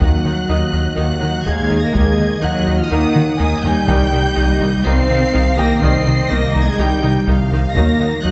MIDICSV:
0, 0, Header, 1, 12, 480
1, 0, Start_track
1, 0, Tempo, 483871
1, 11, Time_signature, 4, 2, 24, 8
1, 8246, End_track
2, 0, Start_track
2, 0, Title_t, "Violin section"
2, 0, Program_c, 0, 48
2, 13, Note_on_c, 0, 90, 98
2, 953, Note_off_c, 0, 90, 0
2, 970, Note_on_c, 0, 90, 98
2, 1441, Note_off_c, 0, 90, 0
2, 1443, Note_on_c, 0, 92, 103
2, 1807, Note_off_c, 0, 92, 0
2, 1807, Note_on_c, 0, 94, 96
2, 1917, Note_on_c, 0, 92, 108
2, 1929, Note_off_c, 0, 94, 0
2, 2395, Note_on_c, 0, 90, 108
2, 2404, Note_off_c, 0, 92, 0
2, 2759, Note_on_c, 0, 89, 106
2, 2763, Note_off_c, 0, 90, 0
2, 2882, Note_off_c, 0, 89, 0
2, 2885, Note_on_c, 0, 87, 104
2, 3360, Note_off_c, 0, 87, 0
2, 3372, Note_on_c, 0, 87, 103
2, 3607, Note_off_c, 0, 87, 0
2, 3608, Note_on_c, 0, 91, 118
2, 4810, Note_off_c, 0, 91, 0
2, 4813, Note_on_c, 0, 96, 123
2, 5532, Note_off_c, 0, 96, 0
2, 5540, Note_on_c, 0, 94, 121
2, 5768, Note_on_c, 0, 96, 127
2, 5776, Note_off_c, 0, 94, 0
2, 6240, Note_off_c, 0, 96, 0
2, 6251, Note_on_c, 0, 94, 118
2, 6611, Note_off_c, 0, 94, 0
2, 6628, Note_on_c, 0, 92, 102
2, 6720, Note_on_c, 0, 91, 107
2, 6740, Note_off_c, 0, 92, 0
2, 7206, Note_off_c, 0, 91, 0
2, 7685, Note_on_c, 0, 94, 117
2, 8134, Note_off_c, 0, 94, 0
2, 8167, Note_on_c, 0, 90, 100
2, 8246, Note_off_c, 0, 90, 0
2, 8246, End_track
3, 0, Start_track
3, 0, Title_t, "Grand piano"
3, 0, Program_c, 1, 0
3, 0, Control_c, 1, 64, 127
3, 28, Control_c, 1, 64, 0
3, 172, Control_c, 1, 64, 127
3, 488, Note_on_c, 1, 75, 54
3, 490, Note_on_c, 1, 63, 48
3, 1890, Note_off_c, 1, 75, 0
3, 1891, Note_off_c, 1, 63, 0
3, 2422, Note_on_c, 1, 78, 75
3, 3817, Note_off_c, 1, 78, 0
3, 3854, Note_on_c, 1, 79, 73
3, 3869, Control_c, 1, 64, 0
3, 4063, Control_c, 1, 64, 127
3, 5253, Note_off_c, 1, 79, 0
3, 5534, Note_on_c, 1, 67, 60
3, 5545, Note_on_c, 1, 79, 84
3, 6486, Note_on_c, 1, 82, 55
3, 6933, Note_off_c, 1, 67, 0
3, 6939, Note_off_c, 1, 79, 0
3, 7708, Control_c, 1, 64, 0
3, 7852, Control_c, 1, 64, 127
3, 7889, Note_off_c, 1, 82, 0
3, 8246, End_track
4, 0, Start_track
4, 0, Title_t, "Violin section"
4, 0, Program_c, 2, 48
4, 22, Note_on_c, 2, 78, 82
4, 487, Note_off_c, 2, 78, 0
4, 499, Note_on_c, 2, 75, 69
4, 975, Note_off_c, 2, 75, 0
4, 986, Note_on_c, 2, 78, 78
4, 1455, Note_on_c, 2, 77, 89
4, 1459, Note_off_c, 2, 78, 0
4, 1924, Note_off_c, 2, 77, 0
4, 1927, Note_on_c, 2, 75, 89
4, 2870, Note_off_c, 2, 75, 0
4, 2887, Note_on_c, 2, 78, 93
4, 3367, Note_on_c, 2, 80, 86
4, 3369, Note_off_c, 2, 78, 0
4, 3849, Note_off_c, 2, 80, 0
4, 3852, Note_on_c, 2, 79, 106
4, 4322, Note_off_c, 2, 79, 0
4, 4334, Note_on_c, 2, 75, 88
4, 4813, Note_off_c, 2, 75, 0
4, 4813, Note_on_c, 2, 77, 107
4, 5772, Note_off_c, 2, 77, 0
4, 5775, Note_on_c, 2, 75, 104
4, 6714, Note_off_c, 2, 75, 0
4, 6741, Note_on_c, 2, 79, 90
4, 7216, Note_off_c, 2, 79, 0
4, 7230, Note_on_c, 2, 77, 96
4, 8161, Note_off_c, 2, 77, 0
4, 8184, Note_on_c, 2, 75, 76
4, 8246, Note_off_c, 2, 75, 0
4, 8246, End_track
5, 0, Start_track
5, 0, Title_t, "French horn section"
5, 0, Program_c, 3, 60
5, 35, Note_on_c, 3, 66, 87
5, 962, Note_off_c, 3, 66, 0
5, 974, Note_on_c, 3, 66, 88
5, 1443, Note_off_c, 3, 66, 0
5, 1443, Note_on_c, 3, 68, 96
5, 1807, Note_off_c, 3, 68, 0
5, 1812, Note_on_c, 3, 70, 91
5, 1932, Note_off_c, 3, 70, 0
5, 1932, Note_on_c, 3, 68, 99
5, 2402, Note_off_c, 3, 68, 0
5, 2404, Note_on_c, 3, 66, 92
5, 2768, Note_off_c, 3, 66, 0
5, 2778, Note_on_c, 3, 65, 89
5, 2885, Note_on_c, 3, 63, 99
5, 2895, Note_off_c, 3, 65, 0
5, 3358, Note_off_c, 3, 63, 0
5, 3375, Note_on_c, 3, 63, 88
5, 3608, Note_off_c, 3, 63, 0
5, 3617, Note_on_c, 3, 67, 100
5, 4640, Note_off_c, 3, 67, 0
5, 4808, Note_on_c, 3, 72, 113
5, 5515, Note_off_c, 3, 72, 0
5, 5545, Note_on_c, 3, 70, 96
5, 5767, Note_on_c, 3, 72, 110
5, 5778, Note_off_c, 3, 70, 0
5, 6249, Note_off_c, 3, 72, 0
5, 6261, Note_on_c, 3, 70, 96
5, 6609, Note_off_c, 3, 70, 0
5, 6612, Note_on_c, 3, 68, 93
5, 6732, Note_off_c, 3, 68, 0
5, 6737, Note_on_c, 3, 67, 97
5, 7214, Note_off_c, 3, 67, 0
5, 7697, Note_on_c, 3, 70, 104
5, 8141, Note_off_c, 3, 70, 0
5, 8177, Note_on_c, 3, 66, 92
5, 8246, Note_off_c, 3, 66, 0
5, 8246, End_track
6, 0, Start_track
6, 0, Title_t, "Ambient pad"
6, 0, Program_c, 4, 92
6, 9, Note_on_c, 4, 63, 77
6, 16, Note_on_c, 4, 58, 69
6, 18, Note_on_c, 4, 51, 66
6, 18, Note_on_c, 4, 75, 76
6, 3810, Note_off_c, 4, 63, 0
6, 3815, Note_off_c, 4, 51, 0
6, 3815, Note_off_c, 4, 75, 0
6, 3844, Note_on_c, 4, 63, 75
6, 3845, Note_on_c, 4, 51, 87
6, 3846, Note_on_c, 4, 55, 85
6, 3850, Note_on_c, 4, 75, 85
6, 3854, Note_off_c, 4, 58, 0
6, 7648, Note_off_c, 4, 63, 0
6, 7649, Note_off_c, 4, 51, 0
6, 7651, Note_off_c, 4, 75, 0
6, 7688, Note_off_c, 4, 55, 0
6, 7690, Note_on_c, 4, 54, 74
6, 7694, Note_on_c, 4, 75, 86
6, 7696, Note_on_c, 4, 51, 77
6, 7700, Note_on_c, 4, 63, 83
6, 8246, Note_off_c, 4, 51, 0
6, 8246, Note_off_c, 4, 54, 0
6, 8246, Note_off_c, 4, 63, 0
6, 8246, Note_off_c, 4, 75, 0
6, 8246, End_track
7, 0, Start_track
7, 0, Title_t, "Viola section"
7, 0, Program_c, 5, 48
7, 15, Note_on_c, 5, 63, 57
7, 16, Note_on_c, 5, 51, 62
7, 94, Note_off_c, 5, 63, 0
7, 95, Note_off_c, 5, 51, 0
7, 252, Note_on_c, 5, 51, 56
7, 255, Note_on_c, 5, 63, 51
7, 332, Note_off_c, 5, 51, 0
7, 335, Note_off_c, 5, 63, 0
7, 489, Note_on_c, 5, 51, 65
7, 492, Note_on_c, 5, 63, 67
7, 569, Note_off_c, 5, 51, 0
7, 572, Note_off_c, 5, 63, 0
7, 721, Note_on_c, 5, 51, 54
7, 725, Note_on_c, 5, 63, 54
7, 801, Note_off_c, 5, 51, 0
7, 804, Note_off_c, 5, 63, 0
7, 958, Note_on_c, 5, 51, 65
7, 960, Note_on_c, 5, 63, 72
7, 1037, Note_off_c, 5, 51, 0
7, 1040, Note_off_c, 5, 63, 0
7, 1196, Note_on_c, 5, 63, 54
7, 1200, Note_on_c, 5, 51, 62
7, 1276, Note_off_c, 5, 63, 0
7, 1279, Note_off_c, 5, 51, 0
7, 1441, Note_on_c, 5, 51, 62
7, 1446, Note_on_c, 5, 63, 66
7, 1521, Note_off_c, 5, 51, 0
7, 1525, Note_off_c, 5, 63, 0
7, 1682, Note_on_c, 5, 63, 67
7, 1685, Note_on_c, 5, 51, 66
7, 1761, Note_off_c, 5, 63, 0
7, 1765, Note_off_c, 5, 51, 0
7, 1914, Note_on_c, 5, 51, 71
7, 1914, Note_on_c, 5, 63, 65
7, 1993, Note_off_c, 5, 51, 0
7, 1993, Note_off_c, 5, 63, 0
7, 2169, Note_on_c, 5, 51, 56
7, 2172, Note_on_c, 5, 63, 64
7, 2248, Note_off_c, 5, 51, 0
7, 2251, Note_off_c, 5, 63, 0
7, 2397, Note_on_c, 5, 63, 75
7, 2398, Note_on_c, 5, 51, 73
7, 2476, Note_off_c, 5, 63, 0
7, 2477, Note_off_c, 5, 51, 0
7, 2644, Note_on_c, 5, 63, 57
7, 2649, Note_on_c, 5, 51, 58
7, 2723, Note_off_c, 5, 63, 0
7, 2728, Note_off_c, 5, 51, 0
7, 2890, Note_on_c, 5, 63, 78
7, 2893, Note_on_c, 5, 51, 83
7, 2970, Note_off_c, 5, 63, 0
7, 2973, Note_off_c, 5, 51, 0
7, 3124, Note_on_c, 5, 63, 68
7, 3126, Note_on_c, 5, 51, 62
7, 3204, Note_off_c, 5, 63, 0
7, 3206, Note_off_c, 5, 51, 0
7, 3363, Note_on_c, 5, 51, 73
7, 3366, Note_on_c, 5, 63, 70
7, 3442, Note_off_c, 5, 51, 0
7, 3445, Note_off_c, 5, 63, 0
7, 3613, Note_on_c, 5, 63, 71
7, 3619, Note_on_c, 5, 51, 75
7, 3692, Note_off_c, 5, 63, 0
7, 3698, Note_off_c, 5, 51, 0
7, 3850, Note_on_c, 5, 51, 85
7, 3850, Note_on_c, 5, 63, 83
7, 3929, Note_off_c, 5, 63, 0
7, 3930, Note_off_c, 5, 51, 0
7, 4086, Note_on_c, 5, 51, 68
7, 4090, Note_on_c, 5, 63, 60
7, 4166, Note_off_c, 5, 51, 0
7, 4169, Note_off_c, 5, 63, 0
7, 4324, Note_on_c, 5, 51, 71
7, 4324, Note_on_c, 5, 63, 78
7, 4404, Note_off_c, 5, 51, 0
7, 4404, Note_off_c, 5, 63, 0
7, 4569, Note_on_c, 5, 63, 65
7, 4572, Note_on_c, 5, 51, 61
7, 4649, Note_off_c, 5, 63, 0
7, 4652, Note_off_c, 5, 51, 0
7, 4816, Note_on_c, 5, 51, 75
7, 4816, Note_on_c, 5, 63, 76
7, 4895, Note_off_c, 5, 63, 0
7, 4896, Note_off_c, 5, 51, 0
7, 5056, Note_on_c, 5, 63, 73
7, 5059, Note_on_c, 5, 51, 67
7, 5135, Note_off_c, 5, 63, 0
7, 5138, Note_off_c, 5, 51, 0
7, 5294, Note_on_c, 5, 51, 75
7, 5294, Note_on_c, 5, 63, 72
7, 5373, Note_off_c, 5, 51, 0
7, 5373, Note_off_c, 5, 63, 0
7, 5532, Note_on_c, 5, 51, 74
7, 5539, Note_on_c, 5, 63, 75
7, 5611, Note_off_c, 5, 51, 0
7, 5618, Note_off_c, 5, 63, 0
7, 5775, Note_on_c, 5, 51, 71
7, 5780, Note_on_c, 5, 63, 83
7, 5855, Note_off_c, 5, 51, 0
7, 5859, Note_off_c, 5, 63, 0
7, 6006, Note_on_c, 5, 51, 65
7, 6011, Note_on_c, 5, 63, 67
7, 6085, Note_off_c, 5, 51, 0
7, 6090, Note_off_c, 5, 63, 0
7, 6247, Note_on_c, 5, 63, 73
7, 6250, Note_on_c, 5, 51, 78
7, 6327, Note_off_c, 5, 63, 0
7, 6330, Note_off_c, 5, 51, 0
7, 6487, Note_on_c, 5, 63, 71
7, 6488, Note_on_c, 5, 51, 61
7, 6567, Note_off_c, 5, 51, 0
7, 6567, Note_off_c, 5, 63, 0
7, 6733, Note_on_c, 5, 63, 86
7, 6738, Note_on_c, 5, 51, 81
7, 6812, Note_off_c, 5, 63, 0
7, 6818, Note_off_c, 5, 51, 0
7, 6974, Note_on_c, 5, 51, 67
7, 6977, Note_on_c, 5, 63, 70
7, 7053, Note_off_c, 5, 51, 0
7, 7057, Note_off_c, 5, 63, 0
7, 7213, Note_on_c, 5, 51, 71
7, 7216, Note_on_c, 5, 63, 72
7, 7293, Note_off_c, 5, 51, 0
7, 7295, Note_off_c, 5, 63, 0
7, 7464, Note_on_c, 5, 63, 65
7, 7467, Note_on_c, 5, 51, 71
7, 7544, Note_off_c, 5, 63, 0
7, 7546, Note_off_c, 5, 51, 0
7, 7703, Note_on_c, 5, 54, 75
7, 7706, Note_on_c, 5, 63, 75
7, 7782, Note_off_c, 5, 54, 0
7, 7785, Note_off_c, 5, 63, 0
7, 7941, Note_on_c, 5, 54, 62
7, 7944, Note_on_c, 5, 63, 56
7, 8020, Note_off_c, 5, 54, 0
7, 8023, Note_off_c, 5, 63, 0
7, 8171, Note_on_c, 5, 63, 70
7, 8173, Note_on_c, 5, 54, 69
7, 8246, Note_off_c, 5, 54, 0
7, 8246, Note_off_c, 5, 63, 0
7, 8246, End_track
8, 0, Start_track
8, 0, Title_t, "Cello section"
8, 0, Program_c, 6, 48
8, 12, Note_on_c, 6, 54, 76
8, 951, Note_off_c, 6, 54, 0
8, 963, Note_on_c, 6, 54, 75
8, 1438, Note_off_c, 6, 54, 0
8, 1449, Note_on_c, 6, 56, 84
8, 1805, Note_on_c, 6, 58, 90
8, 1810, Note_off_c, 6, 56, 0
8, 1926, Note_off_c, 6, 58, 0
8, 1926, Note_on_c, 6, 56, 80
8, 2409, Note_off_c, 6, 56, 0
8, 2410, Note_on_c, 6, 54, 90
8, 2763, Note_off_c, 6, 54, 0
8, 2770, Note_on_c, 6, 53, 81
8, 2890, Note_on_c, 6, 51, 89
8, 2891, Note_off_c, 6, 53, 0
8, 3358, Note_off_c, 6, 51, 0
8, 3370, Note_on_c, 6, 51, 81
8, 3606, Note_off_c, 6, 51, 0
8, 3610, Note_on_c, 6, 55, 106
8, 4787, Note_off_c, 6, 55, 0
8, 4812, Note_on_c, 6, 60, 108
8, 5531, Note_off_c, 6, 60, 0
8, 5533, Note_on_c, 6, 58, 105
8, 5767, Note_off_c, 6, 58, 0
8, 5773, Note_on_c, 6, 60, 97
8, 6252, Note_off_c, 6, 60, 0
8, 6259, Note_on_c, 6, 58, 108
8, 6615, Note_off_c, 6, 58, 0
8, 6622, Note_on_c, 6, 56, 82
8, 6737, Note_off_c, 6, 56, 0
8, 6741, Note_on_c, 6, 55, 87
8, 7216, Note_off_c, 6, 55, 0
8, 7695, Note_on_c, 6, 58, 88
8, 8140, Note_off_c, 6, 58, 0
8, 8177, Note_on_c, 6, 54, 98
8, 8246, Note_off_c, 6, 54, 0
8, 8246, End_track
9, 0, Start_track
9, 0, Title_t, "Trombone section"
9, 0, Program_c, 7, 61
9, 0, Note_on_c, 7, 51, 77
9, 2, Note_on_c, 7, 58, 63
9, 171, Note_off_c, 7, 51, 0
9, 173, Note_off_c, 7, 58, 0
9, 975, Note_on_c, 7, 58, 68
9, 980, Note_on_c, 7, 51, 79
9, 1141, Note_off_c, 7, 58, 0
9, 1145, Note_off_c, 7, 51, 0
9, 1938, Note_on_c, 7, 51, 82
9, 1947, Note_on_c, 7, 58, 89
9, 2103, Note_off_c, 7, 51, 0
9, 2109, Note_off_c, 7, 58, 0
9, 2887, Note_on_c, 7, 58, 85
9, 2888, Note_on_c, 7, 51, 76
9, 3056, Note_off_c, 7, 58, 0
9, 3057, Note_off_c, 7, 51, 0
9, 3857, Note_on_c, 7, 55, 88
9, 3859, Note_on_c, 7, 51, 93
9, 4022, Note_off_c, 7, 55, 0
9, 4024, Note_off_c, 7, 51, 0
9, 4816, Note_on_c, 7, 55, 87
9, 4818, Note_on_c, 7, 51, 92
9, 4982, Note_off_c, 7, 55, 0
9, 4983, Note_off_c, 7, 51, 0
9, 5772, Note_on_c, 7, 51, 99
9, 5775, Note_on_c, 7, 55, 89
9, 5939, Note_off_c, 7, 51, 0
9, 5941, Note_off_c, 7, 55, 0
9, 6746, Note_on_c, 7, 51, 84
9, 6750, Note_on_c, 7, 55, 79
9, 6908, Note_off_c, 7, 51, 0
9, 6911, Note_off_c, 7, 55, 0
9, 7687, Note_on_c, 7, 54, 82
9, 7690, Note_on_c, 7, 51, 82
9, 7856, Note_off_c, 7, 54, 0
9, 7858, Note_off_c, 7, 51, 0
9, 8246, End_track
10, 0, Start_track
10, 0, Title_t, "Analog synth bass"
10, 0, Program_c, 8, 38
10, 13, Note_on_c, 8, 39, 91
10, 157, Note_off_c, 8, 39, 0
10, 250, Note_on_c, 8, 51, 62
10, 395, Note_off_c, 8, 51, 0
10, 491, Note_on_c, 8, 39, 68
10, 635, Note_off_c, 8, 39, 0
10, 726, Note_on_c, 8, 39, 95
10, 872, Note_off_c, 8, 39, 0
10, 969, Note_on_c, 8, 39, 68
10, 1114, Note_off_c, 8, 39, 0
10, 1219, Note_on_c, 8, 51, 75
10, 1361, Note_off_c, 8, 51, 0
10, 1451, Note_on_c, 8, 39, 89
10, 1595, Note_off_c, 8, 39, 0
10, 1695, Note_on_c, 8, 39, 65
10, 1838, Note_off_c, 8, 39, 0
10, 1935, Note_on_c, 8, 39, 105
10, 2078, Note_off_c, 8, 39, 0
10, 2182, Note_on_c, 8, 51, 69
10, 2323, Note_off_c, 8, 51, 0
10, 2419, Note_on_c, 8, 39, 67
10, 2561, Note_off_c, 8, 39, 0
10, 2653, Note_on_c, 8, 39, 103
10, 2797, Note_off_c, 8, 39, 0
10, 2895, Note_on_c, 8, 39, 77
10, 3038, Note_off_c, 8, 39, 0
10, 3133, Note_on_c, 8, 51, 75
10, 3276, Note_off_c, 8, 51, 0
10, 3373, Note_on_c, 8, 39, 101
10, 3516, Note_off_c, 8, 39, 0
10, 3617, Note_on_c, 8, 39, 76
10, 3760, Note_off_c, 8, 39, 0
10, 3852, Note_on_c, 8, 36, 109
10, 3996, Note_off_c, 8, 36, 0
10, 4098, Note_on_c, 8, 48, 70
10, 4240, Note_off_c, 8, 48, 0
10, 4336, Note_on_c, 8, 36, 77
10, 4478, Note_off_c, 8, 36, 0
10, 4574, Note_on_c, 8, 36, 106
10, 4717, Note_off_c, 8, 36, 0
10, 4827, Note_on_c, 8, 36, 79
10, 4966, Note_off_c, 8, 36, 0
10, 5062, Note_on_c, 8, 48, 86
10, 5203, Note_off_c, 8, 48, 0
10, 5305, Note_on_c, 8, 36, 91
10, 5445, Note_off_c, 8, 36, 0
10, 5540, Note_on_c, 8, 36, 74
10, 5682, Note_off_c, 8, 36, 0
10, 5785, Note_on_c, 8, 36, 112
10, 5925, Note_off_c, 8, 36, 0
10, 6019, Note_on_c, 8, 48, 76
10, 6161, Note_off_c, 8, 48, 0
10, 6263, Note_on_c, 8, 36, 70
10, 6404, Note_off_c, 8, 36, 0
10, 6500, Note_on_c, 8, 36, 106
10, 6641, Note_off_c, 8, 36, 0
10, 6735, Note_on_c, 8, 36, 84
10, 6878, Note_off_c, 8, 36, 0
10, 6981, Note_on_c, 8, 48, 76
10, 7122, Note_off_c, 8, 48, 0
10, 7212, Note_on_c, 8, 36, 96
10, 7356, Note_off_c, 8, 36, 0
10, 7458, Note_on_c, 8, 36, 75
10, 7600, Note_off_c, 8, 36, 0
10, 7699, Note_on_c, 8, 39, 106
10, 7841, Note_off_c, 8, 39, 0
10, 7938, Note_on_c, 8, 51, 66
10, 8080, Note_off_c, 8, 51, 0
10, 8181, Note_on_c, 8, 39, 77
10, 8246, Note_off_c, 8, 39, 0
10, 8246, End_track
11, 0, Start_track
11, 0, Title_t, "Double bass section"
11, 0, Program_c, 10, 48
11, 12, Note_on_c, 10, 39, 83
11, 435, Note_off_c, 10, 39, 0
11, 488, Note_on_c, 10, 39, 72
11, 913, Note_off_c, 10, 39, 0
11, 967, Note_on_c, 10, 39, 77
11, 1393, Note_off_c, 10, 39, 0
11, 1449, Note_on_c, 10, 39, 90
11, 1874, Note_off_c, 10, 39, 0
11, 1933, Note_on_c, 10, 39, 87
11, 2356, Note_off_c, 10, 39, 0
11, 2407, Note_on_c, 10, 39, 83
11, 2832, Note_off_c, 10, 39, 0
11, 2888, Note_on_c, 10, 39, 87
11, 3313, Note_off_c, 10, 39, 0
11, 3370, Note_on_c, 10, 39, 92
11, 3794, Note_off_c, 10, 39, 0
11, 3853, Note_on_c, 10, 36, 95
11, 4275, Note_off_c, 10, 36, 0
11, 4328, Note_on_c, 10, 36, 95
11, 4753, Note_off_c, 10, 36, 0
11, 4810, Note_on_c, 10, 36, 95
11, 5234, Note_off_c, 10, 36, 0
11, 5295, Note_on_c, 10, 36, 96
11, 5716, Note_off_c, 10, 36, 0
11, 5769, Note_on_c, 10, 36, 87
11, 6194, Note_off_c, 10, 36, 0
11, 6254, Note_on_c, 10, 36, 101
11, 6676, Note_off_c, 10, 36, 0
11, 6731, Note_on_c, 10, 36, 86
11, 7154, Note_off_c, 10, 36, 0
11, 7211, Note_on_c, 10, 36, 102
11, 7635, Note_off_c, 10, 36, 0
11, 7691, Note_on_c, 10, 39, 86
11, 8114, Note_off_c, 10, 39, 0
11, 8174, Note_on_c, 10, 39, 84
11, 8246, Note_off_c, 10, 39, 0
11, 8246, End_track
12, 0, Start_track
12, 0, Title_t, "Taiko and cinematic ensemble drums"
12, 16, Note_on_c, 9, 41, 90
12, 115, Note_off_c, 9, 41, 0
12, 1461, Note_on_c, 9, 41, 80
12, 1560, Note_off_c, 9, 41, 0
12, 1935, Note_on_c, 9, 41, 91
12, 2035, Note_off_c, 9, 41, 0
12, 3132, Note_on_c, 9, 47, 80
12, 3232, Note_off_c, 9, 47, 0
12, 3371, Note_on_c, 9, 48, 91
12, 3470, Note_off_c, 9, 48, 0
12, 3609, Note_on_c, 9, 43, 80
12, 3708, Note_off_c, 9, 43, 0
12, 3844, Note_on_c, 9, 41, 98
12, 3943, Note_off_c, 9, 41, 0
12, 5294, Note_on_c, 9, 41, 83
12, 5393, Note_off_c, 9, 41, 0
12, 5775, Note_on_c, 9, 41, 103
12, 5874, Note_off_c, 9, 41, 0
12, 7216, Note_on_c, 9, 41, 82
12, 7316, Note_off_c, 9, 41, 0
12, 7694, Note_on_c, 9, 41, 100
12, 7794, Note_off_c, 9, 41, 0
12, 8246, End_track
0, 0, End_of_file